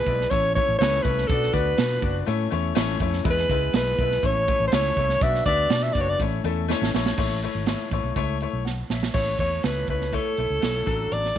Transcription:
Already playing: alto saxophone B4
0.07 fingered electric bass B1, upright piano G#3 B3 E4 D5, kick, closed hi-hat
0.21 snare
0.30 fingered electric bass A1, upright piano A3 C#4 E4 C#5, alto saxophone C#5, kick, closed hi-hat
0.55 upright piano A3 C#4 E4 C#5, alto saxophone C#5, kick, closed hi-hat
0.69 fingered electric bass A1
0.79 fingered electric bass C#2, upright piano A3 C#4 E4 B4, alto saxophone C#5, snare, closed hi-hat
1.03 fingered electric bass C2, upright piano A3 C#4 E4 C#5, alto saxophone B4, kick, closed hi-hat
1.18 snare
1.28 fingered electric bass B1, upright piano B3 D4 F#4 D5, alto saxophone A4, kick, closed hi-hat
1.42 snare
1.52 fingered electric bass D2, upright piano B3 D4 F#4 D5, alto saxophone B4, kick, closed hi-hat
1.76 fingered electric bass B2, upright piano B3 D4 F#4 B4, snare, closed hi-hat
2.01 fingered electric bass F#1, upright piano B3 D4 F#4 D5, kick, closed hi-hat
2.26 fingered electric bass A2, upright piano A3 C#4 E4 C#5, closed hi-hat
2.50 fingered electric bass E2, upright piano A3 C#4 E4 C#5, closed hi-hat
2.75 fingered electric bass A1, upright piano A3 C#4 E4 C#5, snare, closed hi-hat
3.00 fingered electric bass F2, upright piano A3 C#4 E4 C#5, kick, closed hi-hat
3.13 snare
3.24 fingered electric bass E2, upright piano G#3 B3 E4 B4, kick, closed hi-hat
3.30 alto saxophone B4
3.38 snare
3.49 fingered electric bass C#2, upright piano G#3 B3 E4 B4, kick, closed hi-hat
3.73 fingered electric bass B1, upright piano G#3 B3 E4 B4, alto saxophone B4, snare, closed hi-hat
3.99 fingered electric bass B1, upright piano G#3 B3 E4 B4, kick, closed hi-hat
4.11 snare
4.22 fingered electric bass A1, upright piano A3 C#4 E4 C#5, alto saxophone C#5, kick, closed hi-hat
4.48 upright piano A3 C#4 E4 C#5, kick, closed hi-hat
4.60 fingered electric bass A1
4.67 alto saxophone C5
4.72 fingered electric bass C#2, upright piano A3 C#4 E4 C#5, alto saxophone C#5, snare, closed hi-hat
4.97 fingered electric bass C2, upright piano A3 C#4 E4 C#5, kick, closed hi-hat
5.09 snare
5.21 fingered electric bass B1, upright piano B3 D4 F#4 D5, alto saxophone E5, kick, closed hi-hat
5.34 snare
5.45 fingered electric bass D2, upright piano B3 D4 F#4 E5, alto saxophone D5, kick, closed hi-hat
5.70 fingered electric bass B2, upright piano B3 D4 F#4 D5, snare, closed hi-hat
5.83 alto saxophone E5
5.93 fingered electric bass F#1, upright piano B3 D4 F#4, alto saxophone D5, kick, closed hi-hat
5.98 alto saxophone C#5, upright piano D5
6.10 alto saxophone D5
6.20 fingered electric bass A1, upright piano A3 C#4 E4 C#5, kick, closed hi-hat
6.44 fingered electric bass E2, upright piano A3 C#4 E4 A4, closed hi-hat
6.68 upright piano A3 C#4 E4 C#5, snare
6.82 fingered electric bass A1, snare
6.94 fingered electric bass A#1, upright piano A3 C#4 E4 C#5, snare
7.06 snare
7.18 fingered electric bass A1, upright piano A3 E4 C#5, kick, crash
7.42 upright piano A3 E4 C#5, closed hi-hat
7.55 fingered electric bass G#1
7.66 upright piano A3 E4 C#5, snare, closed hi-hat
7.91 fingered electric bass A1, upright piano A3 E4 C#5, kick, closed hi-hat
8.04 fingered electric bass B1
8.16 fingered electric bass C#2, upright piano A3 E4 C#5, kick, closed hi-hat
8.40 upright piano A3 E4 C#5, closed hi-hat
8.53 fingered electric bass B1
8.65 upright piano F#5, snare
8.90 fingered electric bass A#1, upright piano C#5 E5, snare
9.03 snare
9.14 fingered electric bass A1, upright piano A3 E4 C#5, alto saxophone C#5, kick, crash
9.39 fingered electric bass E2, upright piano A3 E4 C#5, alto saxophone C#5, kick, closed hi-hat
9.63 fingered electric bass C#2, upright piano A3 E4 C#5, alto saxophone B4, snare, closed hi-hat
9.87 fingered electric bass C#2, upright piano A3 E4 C#5, alto saxophone B4, kick, closed hi-hat
10.01 snare
10.12 upright piano A3 E4 C#5, alto saxophone A4, kick, closed hi-hat
10.37 fingered electric bass B1, upright piano A3 E4 C#5, closed hi-hat
10.50 fingered electric bass C#2
10.61 fingered electric bass B1, upright piano A3 E4 C#5, snare, closed hi-hat
10.86 fingered electric bass A1, upright piano F#3 D4 A4, kick, closed hi-hat
11.12 fingered electric bass A1, alto saxophone D5, closed hi-hat
11.25 snare
11.35 upright piano F#3 D4

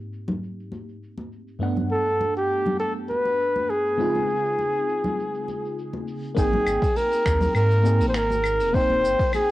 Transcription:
Already playing: fm electric piano G#2 A#3 C4 D#4 G4
0.13 shaker
0.28 high conga, low conga, shaker
0.43 shaker
0.60 shaker
0.72 high conga, shaker
0.89 shaker
1.03 shaker
1.18 high conga
1.32 shaker
1.48 shaker
1.59 fm electric piano G2 A3 B3 D4 F#5, shaker
1.77 high conga, low conga
1.92 flugelhorn A4, shaker
2.09 shaker
2.21 muted conga, high conga, shaker
2.37 flugelhorn G4, shaker
2.52 shaker
2.66 high conga, low conga, shaker
2.80 flugelhorn A4, shaker
2.97 shaker
3.09 flugelhorn B4, high conga, shaker
3.25 muted conga, shaker
3.40 shaker
3.56 high conga
3.69 flugelhorn G#4, muted conga, shaker
3.86 shaker
3.97 fm electric piano C#3 G#3 C4 D#4 F4, shaker
4.15 high conga, shaker
4.29 shaker
4.45 shaker
4.58 high conga, shaker
4.75 shaker
4.88 shaker
5.04 high conga, low conga, shaker
5.19 shaker
5.34 shaker
5.48 high conga, shaker
5.65 shaker
5.79 shaker
5.93 high conga
6.08 shaker
6.23 shaker
6.35 sub bass G#1, fm electric piano A#3 C4 D#4 G5, flugelhorn G#4, kick, open hi-hat, shaker
6.53 high conga, low conga
6.66 sub bass G#1, claves, shaker
6.82 kick, open hi-hat, shaker
6.96 flugelhorn A#4, open hi-hat, high conga, shaker
7.11 open hi-hat, shaker
7.26 sub bass D#2, finger snap, kick, shaker
7.41 open hi-hat, high conga, low conga, shaker
7.55 sub bass G#2, flugelhorn A#4, open hi-hat, claves, shaker
7.70 open hi-hat, shaker
7.83 fm electric piano A#3 C4 D#4 G#4, high conga, shaker
8.00 sub bass G#1, open hi-hat, shaker
8.09 flugelhorn C5
8.14 flugelhorn A#4, finger snap, open hi-hat, shaker
8.30 high conga, shaker
8.44 claves, shaker
8.60 sub bass D#1, open hi-hat, shaker
8.73 fm electric piano A#3 C4 D#4 G5, flugelhorn C5, kick, open hi-hat, shaker
8.90 high conga
9.04 sub bass G#1, shaker
9.19 kick, open hi-hat, shaker
9.32 flugelhorn G#4, open hi-hat, high conga, claves, shaker

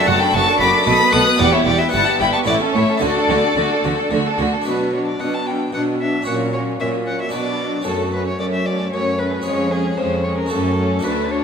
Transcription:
Already playing: harpsichord D4 F#4 A4
0.07 double bass section F#1, harpsichord F#2, cello section F#2, viola section A3, violin section F#4 A5, violin F#5
0.19 viola section D4, violin section A4 B5, violin G5
0.34 double bass section F#1, harpsichord F#2, cello section F#2, viola section A3, violin section F#4 C#6, violin A5
0.46 viola section D4, violin section A4
0.60 double bass section F#1, cello section F#2, harpsichord F#2, viola section A3, violin section F#4 D6, violin B5
0.73 viola section D4, violin section A4
0.83 double bass section B1, cello section B2, viola section A3, harpsichord B3 F#4 A4, violin section A4
0.87 harpsichord B2, violin B5, violin section D#6
0.99 viola section B3, violin section B4
1.12 double bass section B1, cello section B2, harpsichord B2, viola section A3, violin section A4 F#6, violin D#6
1.26 viola section B3, violin section B4
1.36 cello section E2, harpsichord E2 B3 E4 G4, viola section G3, violin D5
1.40 double bass section E1, violin section G4 F#5
1.52 viola section B3, violin section E4 E5, violin C#5
1.65 double bass section E1, cello section E2, harpsichord E2, viola section G3, violin section G4 F#5, violin D5
1.79 viola section B3, violin section E4 G5, violin E5
1.89 double bass section G1, cello section G2, viola section G3, harpsichord B3 E4 B4, violin section E4, violin F#5
1.94 harpsichord G2, violin section A5
2.06 viola section B3, violin section G4
2.19 double bass section G1, cello section G2, harpsichord G2, viola section G3, violin section E4 B5, violin G5
2.32 viola section B3, violin section G4 C#6, violin A5
2.44 double bass section A1, cello section A2, viola section A3, harpsichord C#4 E4 A4, violin section E4 F#5, violin D5
2.48 harpsichord A2
2.60 viola section C#4, violin section A4
2.73 double bass section A1, cello section A2, harpsichord A2, viola section A3, violin section E4 E5, violin C#5
2.88 viola section C#4, violin section A4
2.97 double bass section D2, cello section D3, viola section A3, harpsichord D4 F#4 A4, violin A4
3.02 harpsichord D3, violin section F#4 D5
3.15 viola section D4, violin section A4
3.29 double bass section D2, cello section D3, harpsichord D3, viola section A3, violin section F#4
3.43 viola section D4, violin section A4
3.56 double bass section D2, harpsichord D3, cello section D3, viola section A3, violin section F#4
3.70 viola section D4, violin section A4
3.84 double bass section D2, harpsichord D3, cello section D3, viola section A3, violin section F#4
3.96 viola section D4, violin section A4
4.11 double bass section D2, harpsichord D3, cello section D3, viola section A3, violin section F#4
4.25 viola section D4, violin section A4
4.38 double bass section D2, harpsichord D3, cello section D3, viola section A3, violin section F#4
4.53 viola section D4, violin section A4
4.62 harpsichord D4 F#4 B4, violin B4
4.66 harpsichord B2, cello section B2, viola section F#3, violin section D4 F#4
4.93 viola section F#3, violin section D4 F#4, violin C#5
5.08 violin D5
5.20 cello section B2, harpsichord B2, viola section F#3, violin section D4 F#4, violin F#5
5.34 violin A5
5.46 viola section F#3, violin section D4 F#4, violin G5
5.73 harpsichord B2, cello section B2, viola section F#3, violin section D4 F#4, violin F#5
6.00 viola section F#3, violin section D4 F#4, violin E5
6.22 harpsichord C#4 F#4 C#5
6.27 harpsichord A#2, cello section A#2, viola section F#3, violin section C#4 F#4, violin F#5
6.53 viola section F#3, violin section C#4 F#4, violin C#5
6.80 harpsichord A#2, cello section A#2, viola section F#3, violin section C#4 F#4, violin E5
7.07 viola section F#3, violin section C#4 F#4, violin F#5
7.22 violin E5
7.29 harpsichord D4 F#4 B4
7.33 harpsichord B2, cello section B2, viola section F#3, violin section D4 F#4, violin D5
7.60 viola section F#3, violin section D4 F#4
7.82 harpsichord C#4 F#4 A4
7.86 harpsichord F#2, cello section F#2, viola section A3, violin section C#4 F#4, violin A4
8.13 viola section A3, violin section C#4 F#4, violin B4
8.27 violin C#5
8.39 harpsichord F#2, cello section F#2, viola section A3, violin section C#4 F#4, violin D5
8.53 violin E5
8.66 viola section A3, violin section C#4 F#4, violin D5
8.92 cello section F#2, harpsichord F#2, viola section A3, violin section C#4 F#4, violin C#5
9.19 viola section A3, violin section C#4 F#4, violin B4
9.42 cello section F2, harpsichord C#4 G#4, violin section G#4
9.46 harpsichord F2, viola section G#3, violin section C#4, violin C#5
9.71 viola section G#3, violin section C#4 G#4, violin G#4
9.97 cello section F2, harpsichord F2, viola section G#3, violin section C#4 G#4, violin C5
10.24 viola section G#3, violin section C#4 G#4, violin C#5
10.38 violin A#4
10.46 harpsichord C#4 F#4 A4, violin A4
10.50 cello section F#2, harpsichord F#2, viola section A3, violin section C#4 F#4
10.78 viola section A3, violin section C#4 F#4
10.99 harpsichord D4 F#4 A4
11.04 harpsichord D2, cello section D2, viola section A3, violin section D4 A4, violin B4
11.30 viola section A3, violin section D4 A4, violin C#5

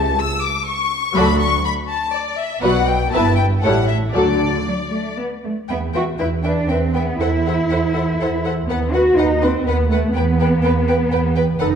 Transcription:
Already playing: double bass section C#2, cello section C#2, violin section A5
0.19 violin section E6
0.43 violin section D6
0.67 violin section C#6
1.16 double bass section D2, cello section D2, viola section F#3 F#4, violin section A4 D5 B5
1.40 violin section C#6
1.65 violin section B5
1.90 violin section A5
2.15 violin section D5
2.39 violin section E5
2.63 double bass section B1, cello section B2, viola section F#3 F#4, violin section B4 D5 F#5
2.87 violin section G5
3.12 double bass section G1, cello section G2, viola section B3 E4, violin section B4 E5 A5
3.36 violin section G5
3.61 double bass section A1, cello section A2, viola section G3 E4, violin section A4 C#5 F#5
3.88 violin section E5
4.13 double bass section D2, cello section D3, viola section F#3 F#4, violin section A4 D5
4.67 cello section F#3
4.92 cello section A3
5.19 cello section B3
5.45 cello section A3
5.69 double bass section E2, cello section B3, viola section B4, violin section E5 G5
5.94 cello section F#4, viola section B4, violin section E5 G5
6.18 double bass section E2, cello section E4, viola section B4, violin section E5 G5
6.43 cello section D4, viola section B4, violin section E5 G5
6.69 double bass section E2, cello section C4, viola section B4, violin section E5 G5
6.95 cello section B3, viola section B4, violin section E5 G5
7.21 double bass section E2, cello section E4, viola section A4, violin section C5 F#5
7.47 viola section A4, violin section C5 F#5
7.70 double bass section E2, viola section A4, violin section C5 F#5
7.95 viola section A4, violin section C5 F#5
8.20 double bass section E2, viola section A4, violin section C5 F#5
8.44 viola section A4, violin section C5 F#5
8.69 double bass section D#2, cello section B3, violin section B4 F#5, viola section B4
8.94 cello section F#4, violin section B4 F#5, viola section B4
9.18 double bass section D#2, cello section D#4, violin section B4 F#5, viola section B4
9.42 cello section C4, violin section B4 F#5, viola section B4
9.67 double bass section D#2, cello section B3, violin section B4 F#5, viola section B4
9.90 cello section A3, violin section B4 F#5, viola section B4
10.15 double bass section E2, cello section B3, violin section B4 G5, viola section B4
10.39 violin section B4 G5, viola section B4
10.63 double bass section E2, viola section B4, violin section B4 G5
10.88 violin section B4 G5, viola section B4
11.12 double bass section E2, violin section B4 G5, viola section B4
11.36 violin section B4 G5, viola section B4
11.60 double bass section F#1, cello section D#4, viola section A4, violin section B4 F#5

